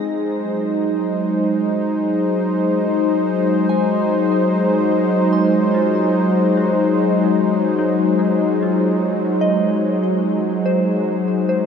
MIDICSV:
0, 0, Header, 1, 3, 480
1, 0, Start_track
1, 0, Tempo, 821918
1, 1191, Time_signature, 4, 2, 24, 8
1, 6809, End_track
2, 0, Start_track
2, 0, Title_t, "Synth bell"
2, 0, Program_c, 0, 98
2, 0, Control_c, 0, 64, 127
2, 0, Note_on_c, 0, 63, 60
2, 0, Note_on_c, 0, 72, 61
2, 250, Note_off_c, 0, 72, 0
2, 979, Note_off_c, 0, 63, 0
2, 2156, Note_on_c, 0, 80, 75
2, 3111, Note_on_c, 0, 84, 67
2, 3210, Note_off_c, 0, 80, 0
2, 3354, Note_on_c, 0, 65, 62
2, 3838, Note_on_c, 0, 66, 63
2, 3929, Note_off_c, 0, 65, 0
2, 4547, Note_on_c, 0, 63, 62
2, 4650, Note_off_c, 0, 66, 0
2, 4783, Note_on_c, 0, 68, 44
2, 5037, Note_on_c, 0, 65, 43
2, 5243, Note_off_c, 0, 68, 0
2, 5295, Note_off_c, 0, 84, 0
2, 5497, Note_on_c, 0, 75, 65
2, 6223, Note_on_c, 0, 72, 55
2, 6320, Note_off_c, 0, 75, 0
2, 6703, Note_off_c, 0, 72, 0
2, 6710, Note_on_c, 0, 72, 52
2, 6733, Note_off_c, 0, 63, 0
2, 6809, Note_off_c, 0, 65, 0
2, 6809, Note_off_c, 0, 72, 0
2, 6809, End_track
3, 0, Start_track
3, 0, Title_t, "Analog synth pad"
3, 0, Program_c, 1, 89
3, 0, Note_on_c, 1, 56, 72
3, 0, Note_on_c, 1, 63, 76
3, 0, Note_on_c, 1, 68, 78
3, 27, Note_on_c, 1, 72, 61
3, 202, Note_on_c, 1, 54, 62
3, 302, Note_off_c, 1, 68, 0
3, 6809, Note_off_c, 1, 54, 0
3, 6809, Note_off_c, 1, 56, 0
3, 6809, Note_off_c, 1, 63, 0
3, 6809, Note_off_c, 1, 72, 0
3, 6809, End_track
0, 0, End_of_file